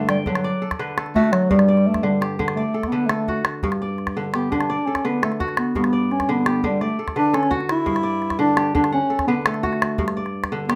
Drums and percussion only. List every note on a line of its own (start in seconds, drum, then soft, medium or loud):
0.09 calabash click medium
0.26 calabash thump medium
0.35 calabash click medium
0.44 calabash click soft
0.71 calabash thump soft
0.71 calabash click soft
0.80 calabash click soft
0.98 calabash click medium
1.06 calabash click soft
1.16 calabash thump medium
1.16 calabash click soft
1.24 calabash click soft
1.33 calabash click medium
1.51 calabash thump medium
1.59 calabash click soft
1.77 calabash click soft
1.94 calabash thump soft
1.94 calabash click soft
2.22 calabash click medium
2.39 calabash thump medium
2.48 calabash click medium
2.83 calabash thump soft
2.83 calabash click soft
3.09 calabash click medium
3.28 calabash thump medium
3.45 calabash click medium
3.63 calabash thump medium
3.72 calabash click soft
3.98 calabash click soft
4.07 calabash thump medium
4.07 calabash click soft
4.34 calabash click medium
4.52 calabash thump medium
4.61 calabash click soft
4.70 calabash click soft
4.95 calabash thump soft
4.95 calabash click medium
5.05 calabash click soft
5.23 calabash click medium
5.32 calabash click soft
5.41 calabash thump medium
5.41 calabash click soft
5.48 calabash click soft
5.57 calabash click medium
5.75 calabash thump medium
5.84 calabash click soft
6.11 calabash click soft
6.20 calabash thump medium
6.20 calabash click medium
6.46 calabash click medium
6.63 calabash thump medium
6.81 calabash click soft
7.08 calabash thump soft
7.08 calabash click soft
7.17 calabash click soft
7.34 calabash click medium
7.43 calabash click soft
7.51 calabash thump medium
7.51 calabash click soft
7.61 calabash click soft
7.69 calabash click medium
7.87 calabash thump medium
7.96 calabash click soft
8.22 calabash click soft
8.30 calabash thump medium
8.30 calabash click medium
8.57 calabash click medium
8.75 calabash thump medium
8.84 calabash click soft
8.93 calabash click soft
9.19 calabash thump medium
9.19 calabash click soft
9.46 calabash click medium
9.54 calabash click soft
9.64 calabash thump medium
9.64 calabash click soft
9.73 calabash click soft
9.82 calabash click medium
9.98 calabash thump medium
10.08 calabash click medium
10.26 calabash click soft
10.44 calabash thump medium
10.44 calabash click medium
10.70 calabash click medium